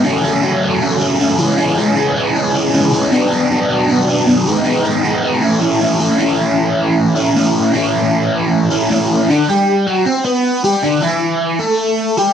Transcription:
X:1
M:4/4
L:1/8
Q:1/4=156
K:Dlyd
V:1 name="Overdriven electric guitar" clef=bass
[F,,C,F,A,C] [F,,C,F,A,C] [F,,C,F,A,C] [F,,C,F,A,C] [F,,C,F,A,C] [F,,C,F,A,C] [F,,C,F,A,C] [C,E,G,C] | [C,E,G,C] [C,E,G,C] [C,E,G,C] [C,E,G,C] [C,E,G,C] [C,E,G,C] [C,E,G,C] [C,E,G,C] | [B,,F,B,D] [B,,F,B,D] [B,,F,B,D] [B,,F,B,D] [B,,F,B,D] [B,,F,B,D] [B,,F,B,D] [G,,^D,G,B,^D] | [G,,^D,G,B,^D] [G,,D,G,B,D] [G,,D,G,B,D] [G,,D,G,B,D] [A,,E,A,CE] [A,,E,A,CE] [A,,E,A,CE] [A,,E,A,CE] |
[A,,E,A,CE]4- [A,,E,A,CE] [A,,E,A,CE] [A,,E,A,CE]2 | [A,,E,A,CE]4- [A,,E,A,CE] [A,,E,A,CE] [A,,E,A,CE]2 | [D,D] [=G,=G]2 [F,F] [=C=c] [B,B]2 [G,G] | [D,D] [E,E]3 [A,A]3 [=G,=G] |]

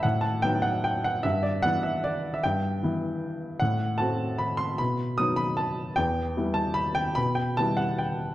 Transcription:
X:1
M:3/4
L:1/16
Q:1/4=150
K:Em
V:1 name="Grand piano"
f2 a2 g2 f2 g2 f2 | e2 d2 f2 e2 d3 e | g12 | f4 a4 b2 c'2 |
b4 ^d'2 b2 a4 | g6 a2 b2 g2 | b2 g2 a2 f2 g4 |]
V:2 name="Grand piano"
A,,4 [F,B,^D]8 | G,,4 [E,B,E]8 | G,,4 [E,B,E]8 | A,,4 [A,CF]8 |
B,,4 [F,B,^D]8 | E,,4 [G,B,E]8 | B,,4 [G,B,E]8 |]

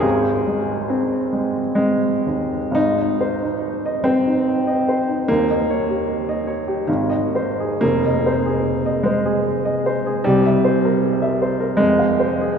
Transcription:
X:1
M:3/4
L:1/16
Q:1/4=73
K:Ab
V:1 name="Upright piano"
A,,,2 A,2 C2 A,2 C2 E,,2 | A,,, e c E2 e c E2 e c E | E,, e d G2 e d G A,,, e c A | F,,, e c A2 e c A2 e c A |
C,, =e c B2 e c B F,, f c A |]
V:2 name="Upright piano"
A8 A,4 | E6 C6 | B,8 E,4 | B,6 A,6 |
G,8 A,4 |]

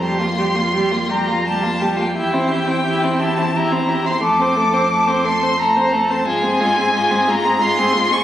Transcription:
X:1
M:3/4
L:1/16
Q:1/4=88
K:F
V:1 name="Violin"
c'6 b2 a3 g | g6 a2 b3 c' | d'6 c'2 b3 a | [K:Fm] a6 b2 c'3 d' |]
V:2 name="Violin"
G F G F G F G F G F G F | G E G E G E G E G E G E | A c A c A c A c A c A c | [K:Fm] F A F A F A F A F A F A |]
V:3 name="Viola"
G, B, G, B, G, B, G, B, G, B, G, B, | E C E C E C E C E C E C | A, C A, C A, C A, C A, C A, C | [K:Fm] A, C A, C A, C A, C A, C A, C |]
V:4 name="Cello" clef=bass
F,,12 | E,,12 | F,,12 | [K:Fm] A,,12 |]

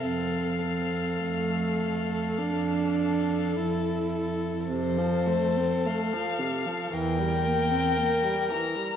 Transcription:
X:1
M:4/4
L:1/16
Q:1/4=52
K:F
V:1 name="Violin"
f12 z4 | c4 f4 g6 b2 |]
V:2 name="Violin"
A2 A4 A4 A4 A2 | A8 B8 |]
V:3 name="Viola"
C2 C2 A,4 D4 E4 | C, F, A, C A, F, C, F, E, G, B, C B, G, E, G, |]
V:4 name="Cello" clef=bass
F,,4 F,,4 F,,4 F,,4 | F,,4 z4 E,,4 z4 |]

